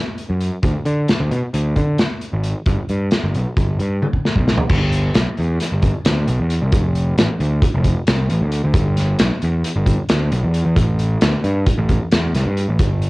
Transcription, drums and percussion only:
0.18 closed hi-hat
0.41 closed hi-hat
0.63 kick, closed hi-hat
0.85 closed hi-hat
1.08 snare, closed hi-hat
1.31 closed hi-hat
1.54 closed hi-hat
1.76 kick, closed hi-hat
1.98 snare, closed hi-hat
2.21 closed hi-hat
2.43 closed hi-hat
2.66 kick, closed hi-hat
2.89 closed hi-hat
3.11 snare, closed hi-hat
3.35 closed hi-hat
3.57 kick, closed hi-hat
3.79 closed hi-hat
4.02 high tom
4.13 kick
4.25 snare
4.36 kick
4.48 snare
4.58 floor tom
4.69 kick, crash
4.92 closed hi-hat
5.14 snare, closed hi-hat
5.37 closed hi-hat
5.60 snare, closed hi-hat
5.82 kick, closed hi-hat
6.05 snare, closed hi-hat
6.28 closed hi-hat
6.50 closed hi-hat
6.72 kick, closed hi-hat
6.95 closed hi-hat
7.18 snare, closed hi-hat
7.40 closed hi-hat
7.62 kick, closed hi-hat
7.84 kick, closed hi-hat
8.07 snare, closed hi-hat
8.30 closed hi-hat
8.52 closed hi-hat
8.74 kick, closed hi-hat
8.97 snare, closed hi-hat
9.19 snare, closed hi-hat
9.42 closed hi-hat
9.64 closed hi-hat
9.86 kick, closed hi-hat
10.09 snare, closed hi-hat
10.32 closed hi-hat
10.54 closed hi-hat
10.77 kick, closed hi-hat
10.99 closed hi-hat
11.21 snare, closed hi-hat
11.44 closed hi-hat
11.66 kick, closed hi-hat
11.89 kick, closed hi-hat
12.11 snare, closed hi-hat
12.34 snare, closed hi-hat
12.57 closed hi-hat
12.79 kick, closed hi-hat
13.02 closed hi-hat

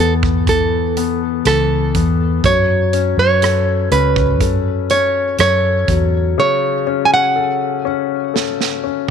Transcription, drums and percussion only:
0.23 kick, cross-stick
0.47 kick, closed hi-hat
0.97 closed hi-hat
1.45 cross-stick, closed hi-hat
1.95 kick, closed hi-hat
2.44 kick, closed hi-hat
2.93 closed hi-hat
3.42 cross-stick, closed hi-hat
3.92 closed hi-hat
4.16 kick, cross-stick
4.41 kick, closed hi-hat
4.90 closed hi-hat
5.39 cross-stick, closed hi-hat
5.88 kick, closed hi-hat
8.36 snare
8.61 snare

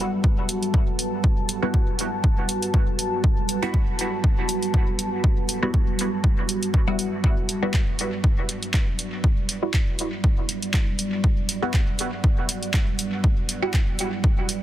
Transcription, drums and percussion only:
0.24 kick
0.49 closed hi-hat
0.63 closed hi-hat
0.74 kick
0.99 closed hi-hat
1.24 kick
1.49 closed hi-hat
1.74 kick
1.99 closed hi-hat
2.24 kick
2.49 closed hi-hat
2.62 closed hi-hat
2.74 kick
2.99 closed hi-hat
3.24 kick
3.49 closed hi-hat
3.74 kick
3.99 closed hi-hat
4.24 kick
4.49 closed hi-hat
4.62 closed hi-hat
4.74 kick
4.99 closed hi-hat
5.24 kick
5.49 closed hi-hat
5.74 kick
5.99 closed hi-hat
6.24 kick
6.49 closed hi-hat
6.63 closed hi-hat
6.74 kick
6.99 closed hi-hat
7.24 kick
7.49 closed hi-hat
7.74 kick, clap
7.99 closed hi-hat
8.24 kick
8.49 closed hi-hat
8.63 closed hi-hat
8.74 kick, clap
8.99 closed hi-hat
9.24 kick
9.49 closed hi-hat
9.74 kick, clap
9.99 closed hi-hat
10.24 kick
10.49 closed hi-hat
10.62 closed hi-hat
10.74 kick, clap
10.99 closed hi-hat
11.24 kick
11.49 closed hi-hat
11.74 kick, clap
11.99 closed hi-hat
12.24 kick
12.49 closed hi-hat
12.63 closed hi-hat
12.74 kick, clap
12.99 closed hi-hat
13.24 kick
13.49 closed hi-hat
13.74 kick, clap
13.99 closed hi-hat
14.24 kick
14.49 closed hi-hat

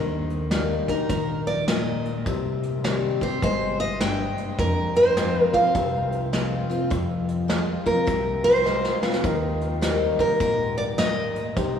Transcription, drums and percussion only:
0.30 closed hi-hat
0.51 snare, closed hi-hat
0.88 kick, closed hi-hat
1.09 kick, closed hi-hat
1.47 closed hi-hat
1.68 snare, closed hi-hat
2.05 closed hi-hat
2.26 kick, closed hi-hat
2.63 closed hi-hat
2.84 snare, closed hi-hat
3.21 kick, closed hi-hat
3.42 kick, closed hi-hat
3.79 closed hi-hat
4.00 snare, closed hi-hat
4.38 closed hi-hat
4.58 kick, closed hi-hat
4.95 closed hi-hat
5.17 snare, closed hi-hat
5.53 kick, closed hi-hat
5.75 kick, closed hi-hat
6.12 closed hi-hat
6.33 snare, closed hi-hat
6.70 closed hi-hat
6.91 kick, closed hi-hat
7.28 closed hi-hat
7.50 snare, closed hi-hat
7.86 kick, closed hi-hat
8.07 kick, closed hi-hat
8.45 closed hi-hat
8.66 snare
8.84 snare
9.03 snare
9.14 snare
9.24 kick, closed hi-hat
9.61 closed hi-hat
9.82 snare, closed hi-hat
10.19 kick, closed hi-hat
10.40 kick, closed hi-hat
10.77 closed hi-hat
10.98 snare, closed hi-hat
11.36 closed hi-hat
11.57 kick, closed hi-hat

